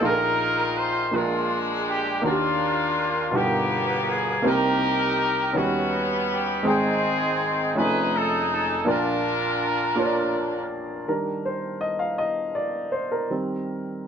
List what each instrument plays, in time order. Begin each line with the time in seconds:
0.01 upright piano A#1 A#2 A#3 D#4 F4 G#4 A4, horn section D#4 F4 A#4
0.10 upright piano A#4
0.78 horn section C5
1.11 upright piano A#1 A#2 A#3 D4 F4 G#4 A#4, horn section G#3
1.16 horn section D4 F4
1.90 horn section G4
2.22 upright piano D#2 D#3 A#3 D4 F#4 A#4, horn section D4
2.26 horn section A#3 F4
2.31 upright piano G4
3.31 upright piano G1 G2 B2 D#4 F4 G4
3.35 horn section A#3 B3 G4, upright piano A#4
4.10 horn section G#4
4.42 upright piano C2 C3 A#3 C4 D#4 G4 A#4
4.47 horn section D#4 G4 A#4
5.53 upright piano D#2 D#3 B3 C#4 D#4 F#4
5.57 upright piano G3, horn section B3 C#4 F#4
6.32 horn section G4
6.63 upright piano G#1 G#2 G#3 C4 D#4 G#4 G5
6.68 horn section C4 D#4 G#4
7.74 upright piano F1 F2 A3 C#4 D#4 F4 G#5, horn section D#4 G#4 B4
8.16 horn section A4
8.53 horn section A4
8.85 upright piano A#1 A#2 A#3 D4 F4 A#4 D5
8.89 horn section D4 F4 A#4
9.96 upright piano A#3 D4 F4 A#4 C#5
10.05 upright piano D5
11.08 upright piano D#3 G3 D4 A#4
11.45 upright piano C5
11.81 upright piano D#5
11.99 upright piano F5
12.18 upright piano D#5
12.55 upright piano D5
12.92 upright piano C5
13.12 upright piano A#4
13.30 upright piano D#3 G3 C4